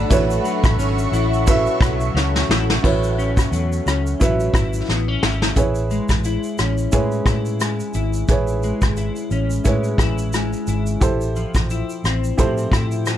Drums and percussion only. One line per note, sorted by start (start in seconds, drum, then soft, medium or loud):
0.11 kick loud
0.11 ride medium
0.11 shaker medium
0.30 shaker medium
0.45 ride soft
0.45 shaker medium
0.64 kick medium
0.64 cross-stick medium
0.64 shaker medium
0.79 ride medium
0.79 shaker medium
0.98 shaker medium
1.14 ride soft
1.14 shaker medium
1.33 shaker soft
1.47 kick medium
1.47 ride medium
1.47 shaker medium
1.66 shaker soft
1.81 kick loud
1.81 cross-stick loud
1.81 ride soft
1.81 shaker medium
2.00 shaker medium
2.17 snare medium
2.36 snare medium
2.51 snare loud
2.70 snare loud
2.84 kick loud
2.84 crash medium
3.03 shaker soft
3.19 closed hi-hat soft
3.19 shaker medium
3.37 kick medium
3.37 cross-stick medium
3.37 shaker medium
3.53 closed hi-hat medium
3.53 shaker medium
3.72 shaker soft
3.87 cross-stick medium
3.87 closed hi-hat medium
3.87 shaker medium
4.07 shaker soft
4.21 kick medium
4.21 closed hi-hat medium
4.21 shaker medium
4.40 shaker soft
4.54 kick loud
4.54 cross-stick medium
4.54 closed hi-hat soft
4.54 shaker soft
4.73 shaker medium
4.89 snare medium
5.23 snare medium
5.42 snare medium
5.56 kick medium
5.56 closed hi-hat medium
5.56 shaker medium
5.75 shaker soft
5.91 closed hi-hat soft
5.91 shaker soft
6.09 kick medium
6.09 cross-stick medium
6.09 shaker soft
6.24 closed hi-hat medium
6.24 shaker medium
6.43 shaker soft
6.58 cross-stick medium
6.58 closed hi-hat soft
6.58 shaker soft
6.78 shaker soft
6.92 kick medium
6.92 closed hi-hat medium
6.92 shaker medium
7.12 shaker soft
7.26 kick loud
7.26 cross-stick medium
7.26 closed hi-hat soft
7.26 shaker soft
7.45 shaker medium
7.60 cross-stick medium
7.60 closed hi-hat medium
7.60 shaker medium
7.80 shaker soft
7.94 closed hi-hat medium
7.94 shaker medium
8.13 shaker soft
8.28 kick loud
8.28 closed hi-hat medium
8.28 shaker medium
8.47 shaker soft
8.63 closed hi-hat soft
8.63 shaker soft
8.81 kick medium
8.81 cross-stick medium
8.81 shaker soft
8.97 closed hi-hat medium
8.97 shaker medium
9.16 shaker soft
9.31 closed hi-hat medium
9.31 shaker soft
9.50 shaker soft
9.65 kick medium
9.65 closed hi-hat medium
9.65 shaker medium
9.84 shaker soft
9.98 kick medium
9.98 cross-stick medium
9.98 closed hi-hat soft
9.98 shaker soft
10.18 shaker medium
10.33 cross-stick medium
10.33 closed hi-hat medium
10.33 shaker medium
10.53 shaker soft
10.67 closed hi-hat medium
10.67 shaker medium
10.86 shaker medium
11.01 kick loud
11.01 closed hi-hat medium
11.01 shaker medium
11.21 shaker soft
11.36 closed hi-hat soft
11.36 shaker soft
11.54 kick medium
11.54 cross-stick medium
11.54 shaker soft
11.70 closed hi-hat medium
11.70 shaker medium
11.89 shaker soft
12.04 cross-stick medium
12.04 closed hi-hat medium
12.04 shaker soft
12.24 shaker soft
12.38 kick medium
12.38 closed hi-hat medium
12.38 shaker medium
12.58 shaker soft
12.72 kick medium
12.72 cross-stick medium
12.72 closed hi-hat soft
12.72 shaker soft
12.91 shaker medium
13.06 cross-stick medium
13.06 closed hi-hat medium
13.06 shaker medium